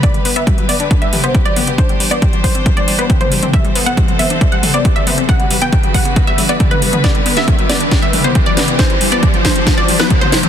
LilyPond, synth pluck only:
\new Staff \with { instrumentName = "Synth pluck" } { \time 4/4 \key g \major \tempo 4 = 137 d''8 r16 e''8 r16 d''8 r16 e''16 r16 c''16 r16 d''8 r16 | c''8 r16 d''8 r16 c''8 r16 d''16 r16 b'16 r16 c''8 r16 | e''8 r16 fis''8 r16 e''8 r16 fis''16 r16 d''16 r16 e''8 r16 | fis''8 r16 g''8 r16 fis''8 r16 e''16 r16 d''16 r16 b'8 r16 |
d''8 r16 e''8 r16 d''8 r16 e''16 r16 c''16 r16 d''8 r16 | c''8 r16 d''8 r16 c''8 r16 d''16 r16 b'16 r16 c''8 r16 | }